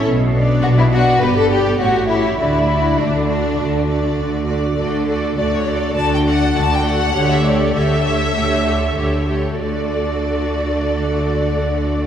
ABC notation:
X:1
M:4/4
L:1/16
Q:1/4=100
K:D
V:1 name="Violin section"
z2 d4 d2 d2 d2 c2 c2 | d2 d4 d4 d4 d2 | z4 d c d2 a g f2 a g f2- | f e d2 e8- e2 z2 |
d16 |]
V:2 name="Violin section"
z4 F E F2 B A G2 F2 E2 | E4 D8 z4 | [Ad]2 [Ad]2 [Ad]2 [Ad]2 [Ad]2 [Ad]2 [Ad]2 [Ad]2 | [Ac]2 [Ac]2 [Ac]2 [Ac]2 [Ac]2 [Ac]2 [Ac]2 [Ac]2 |
[Ad]16 |]
V:3 name="Viola section"
z2 [B,D]4 [B,D]2 [B,G]2 [B,G]2 [A,G]2 [A,G]2 | [A,F]2 [A,F]4 [A,F]4 [A,F]4 [A,F]2 | [A,F]2 [A,F]2 [A,F]2 [A,F]2 [A,F]2 [A,F]2 [A,F]2 [A,F]2 | [A,G]2 [A,G]2 [A,G]2 [A,G]2 [A,G]2 [A,G]2 [A,G]2 [A,G]2 |
[A,F]16 |]
V:4 name="Cello section" clef=bass
B,,4 B,,4 G,,4 A,,4 | D,4 D,4 D,4 D,4 | D,4 D,4 D,4 D,4 | D,4 D,4 D,4 D,4 |
D,16 |]
V:5 name="Double bass section" clef=bass
B,,,4 B,,,4 G,,,4 A,,,4 | D,,4 D,,4 D,,4 D,,4 | D,,4 D,,4 D,,4 D,,4 | D,,4 D,,4 D,,4 D,,4 |
D,,16 |]